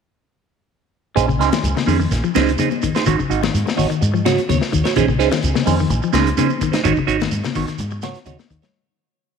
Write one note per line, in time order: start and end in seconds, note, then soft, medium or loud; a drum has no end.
1.15 1.40 A#1 medium
1.15 1.29 C#4 medium
1.15 1.27 D#4 medium
1.15 1.27 G#4 medium
1.15 1.27 C5 medium
1.15 muted clean electric guitar stroke medium
1.15 kick medium
1.15 closed hi-hat medium
1.15 high conga soft
1.15 shekere medium
1.28 1.41 C#3 medium
1.28 muted clean electric guitar stroke soft
1.28 kick medium
1.28 shekere soft
1.39 1.50 C#2 medium
1.39 1.52 C#4 medium
1.39 1.51 D#4 medium
1.39 1.51 G#4 medium
1.39 1.50 C5 loud
1.39 snare soft
1.39 closed hi-hat soft
1.39 shekere medium
1.52 1.65 D#3 medium
1.52 muted clean electric guitar stroke soft
1.52 snare medium
1.52 closed hi-hat medium
1.52 high conga medium
1.52 shekere soft
1.63 1.73 C#2 medium
1.63 closed hi-hat medium
1.63 high conga soft
1.63 shekere medium
1.75 1.83 C#3 medium
1.75 muted clean electric guitar stroke soft
1.75 snare medium
1.75 high conga medium
1.75 shekere soft
1.87 2.06 F2 medium
1.87 1.94 D#3 medium
1.87 2.00 C#4 medium
1.87 1.99 D#4 medium
1.87 1.99 G#4 medium
1.87 1.99 C5 medium
1.87 open hi-hat medium
1.87 high conga medium
1.87 shekere medium
2.00 2.12 D#3 medium
2.00 muted clean electric guitar stroke soft
2.00 shekere soft
2.11 2.21 A#1 medium
2.11 muted clean electric guitar stroke soft
2.11 snare soft
2.11 closed hi-hat medium
2.11 high conga soft
2.11 shekere medium
2.24 2.30 F3 medium
2.24 muted clean electric guitar stroke soft
2.24 shekere soft
2.35 2.54 C#2 medium
2.35 2.48 C#3 medium
2.35 2.50 C#4 medium
2.35 2.50 D#4 medium
2.35 2.50 G#4 medium
2.35 2.50 C5 medium
2.35 snare medium
2.35 closed hi-hat soft
2.35 high conga medium
2.35 shekere medium
2.47 closed hi-hat soft
2.47 shekere soft
2.58 2.71 C#3 medium
2.58 2.70 D#4 medium
2.58 2.70 G#4 medium
2.58 2.70 C5 medium
2.58 closed hi-hat medium
2.58 high conga medium
2.58 shekere medium
2.71 muted clean electric guitar stroke soft
2.71 high conga medium
2.71 shekere soft
2.82 2.95 D#3 medium
2.82 muted clean electric guitar stroke soft
2.82 kick medium
2.82 closed hi-hat medium
2.82 shekere medium
2.95 3.05 D#4 soft
2.95 3.07 G#4 soft
2.95 3.07 C5 medium
2.95 snare medium
2.95 closed hi-hat medium
2.95 shekere soft
3.06 3.16 G#1 medium
3.06 3.13 D#3 medium
3.06 3.19 D#4 medium
3.06 3.18 F#4 medium
3.06 3.17 C#5 medium
3.06 kick medium
3.06 closed hi-hat medium
3.06 high conga soft
3.06 shekere medium
3.19 3.31 C#3 medium
3.19 muted clean electric guitar stroke soft
3.19 kick medium
3.19 shekere soft
3.30 3.49 G#1 medium
3.30 3.42 D#4 medium
3.30 3.43 F#4 medium
3.30 closed hi-hat soft
3.30 shekere medium
3.43 3.55 D#3 medium
3.43 muted clean electric guitar stroke soft
3.43 snare medium
3.43 high conga medium
3.43 shekere soft
3.54 3.64 G#2 medium
3.54 closed hi-hat medium
3.54 high conga soft
3.54 shekere medium
3.66 muted clean electric guitar stroke soft
3.66 snare medium
3.66 high conga medium
3.66 shekere soft
3.77 3.88 G#1 medium
3.77 3.84 D#3 medium
3.77 3.90 D#4 medium
3.77 3.89 F#4 medium
3.77 3.88 C#5 medium
3.77 kick medium
3.77 open hi-hat medium
3.77 shekere medium
3.89 4.02 D#3 medium
3.89 muted clean electric guitar stroke soft
3.89 closed hi-hat soft
3.89 shekere soft
4.01 4.38 G#2 medium
4.01 muted clean electric guitar stroke soft
4.01 closed hi-hat medium
4.01 high conga soft
4.01 shekere medium
4.14 4.20 F3 medium
4.14 muted clean electric guitar stroke soft
4.14 shekere soft
4.25 4.38 C#3 medium
4.25 4.40 F#4 medium
4.25 4.40 C#5 medium
4.25 muted clean electric guitar stroke medium
4.25 snare medium
4.25 closed hi-hat soft
4.25 high conga medium
4.25 shekere medium
4.38 closed hi-hat soft
4.38 shekere soft
4.49 4.59 D#2 medium
4.49 4.61 C#3 medium
4.49 4.59 C#5 medium
4.49 muted clean electric guitar stroke medium
4.49 snare soft
4.49 closed hi-hat medium
4.49 high conga medium
4.49 shekere medium
4.61 muted clean electric guitar stroke soft
4.61 snare medium
4.61 shekere soft
4.72 4.82 D#2 medium
4.72 4.84 D#3 medium
4.72 muted clean electric guitar stroke soft
4.72 kick medium
4.72 closed hi-hat soft
4.72 shekere medium
4.84 4.97 F#4 soft
4.84 4.96 C#5 medium
4.84 snare medium
4.84 closed hi-hat medium
4.84 shekere soft
4.96 5.19 A#1 loud
4.96 5.03 D#3 medium
4.96 5.08 C#4 medium
4.96 5.07 D#4 medium
4.96 5.07 G#4 medium
4.96 5.07 C5 medium
4.96 kick medium
4.96 closed hi-hat medium
4.96 shekere medium
5.08 5.21 C#3 medium
5.08 muted clean electric guitar stroke soft
5.08 kick medium
5.08 shekere soft
5.19 5.29 C#2 medium
5.19 5.32 C#4 medium
5.19 5.30 D#4 medium
5.19 5.30 G#4 medium
5.19 5.30 C5 loud
5.19 snare soft
5.19 closed hi-hat soft
5.19 shekere medium
5.31 5.44 D#3 medium
5.31 muted clean electric guitar stroke soft
5.31 snare medium
5.31 closed hi-hat soft
5.31 high conga medium
5.31 shekere soft
5.42 5.53 C#2 medium
5.42 closed hi-hat medium
5.42 high conga soft
5.42 shekere medium
5.54 5.62 C#3 medium
5.54 muted clean electric guitar stroke soft
5.54 snare medium
5.54 high conga medium
5.54 shekere soft
5.66 5.85 F2 medium
5.66 5.73 D#3 medium
5.66 5.78 C#4 medium
5.66 5.77 D#4 medium
5.66 5.77 G#4 medium
5.66 5.77 C5 medium
5.66 open hi-hat medium
5.66 high conga medium
5.66 shekere medium
5.78 5.92 D#3 medium
5.78 muted clean electric guitar stroke soft
5.78 shekere soft
5.90 5.99 A#1 medium
5.90 muted clean electric guitar stroke soft
5.90 closed hi-hat medium
5.90 high conga soft
5.90 shekere medium
6.02 6.09 F3 medium
6.02 muted clean electric guitar stroke soft
6.02 shekere soft
6.13 6.32 C#2 medium
6.13 6.27 C#3 medium
6.13 6.28 C#4 medium
6.13 6.28 D#4 medium
6.13 6.28 G#4 medium
6.13 6.28 C5 medium
6.13 snare medium
6.13 closed hi-hat soft
6.13 high conga medium
6.13 shekere medium
6.25 closed hi-hat medium
6.25 shekere soft
6.37 6.51 C#3 medium
6.37 6.50 C#4 medium
6.37 6.48 D#4 medium
6.37 6.48 G#4 medium
6.37 6.50 C5 medium
6.37 closed hi-hat medium
6.37 high conga medium
6.37 shekere medium
6.50 muted clean electric guitar stroke soft
6.50 high conga medium
6.50 shekere soft
6.61 6.74 D#3 medium
6.61 muted clean electric guitar stroke soft
6.61 kick medium
6.61 closed hi-hat soft
6.61 shekere medium
6.72 6.82 D#4 medium
6.72 6.84 C5 medium
6.72 muted clean electric guitar stroke soft
6.72 snare medium
6.72 closed hi-hat medium
6.72 shekere soft
6.84 6.94 G#1 medium
6.84 6.93 D#3 medium
6.84 6.96 D#4 medium
6.84 6.95 F#4 medium
6.84 6.94 C#5 medium
6.84 kick medium
6.84 closed hi-hat medium
6.84 high conga soft
6.84 shekere medium
6.95 7.10 C#3 medium
6.95 muted clean electric guitar stroke soft
6.95 kick medium
6.95 shekere soft
7.07 7.26 G#1 medium
7.07 7.20 D#4 medium
7.07 7.19 F#4 loud
7.07 7.18 C#5 medium
7.07 closed hi-hat medium
7.07 shekere medium
7.19 7.33 D#3 medium
7.19 muted clean electric guitar stroke soft
7.19 snare medium
7.19 high conga medium
7.19 shekere soft
7.31 7.41 G#2 medium
7.31 closed hi-hat medium
7.31 high conga soft
7.31 shekere medium
7.43 7.51 C#3 medium
7.43 muted clean electric guitar stroke soft
7.43 snare medium
7.43 high conga medium
7.43 shekere soft
7.55 7.65 G#1 medium
7.55 7.63 D#3 medium
7.55 7.68 D#4 medium
7.55 7.67 F#4 medium
7.55 7.67 C#5 medium
7.55 kick medium
7.55 open hi-hat medium
7.55 high conga medium
7.55 shekere medium
7.68 7.80 D#3 medium
7.68 muted clean electric guitar stroke soft
7.68 snare soft
7.68 closed hi-hat medium
7.68 shekere soft
7.78 8.15 G#2 medium
7.78 muted clean electric guitar stroke soft
7.78 closed hi-hat medium
7.78 high conga soft
7.78 shekere medium
7.91 muted clean electric guitar stroke soft
7.91 shekere soft
8.02 8.15 C#3 medium
8.02 8.18 F#4 medium
8.02 8.18 C#5 medium
8.02 snare medium
8.02 closed hi-hat soft
8.02 high conga medium
8.02 shekere medium
8.14 snare soft
8.14 closed hi-hat medium
8.14 shekere soft
8.25 8.36 D#2 medium
8.25 8.39 C#3 medium
8.25 8.38 D#4 medium
8.25 8.39 F#4 medium
8.25 8.38 C#5 medium
8.25 closed hi-hat medium
8.25 high conga medium
8.25 shekere medium
8.38 muted clean electric guitar stroke soft
8.38 snare medium
8.38 high conga medium
8.38 shekere soft
8.50 8.60 D#2 medium
8.50 8.62 D#3 medium
8.50 muted clean electric guitar stroke soft
8.50 kick medium
8.50 closed hi-hat soft
8.50 shekere medium
8.62 8.74 C#5 medium
8.62 muted clean electric guitar stroke medium
8.62 snare medium
8.62 closed hi-hat soft
8.62 low conga medium
8.62 shekere soft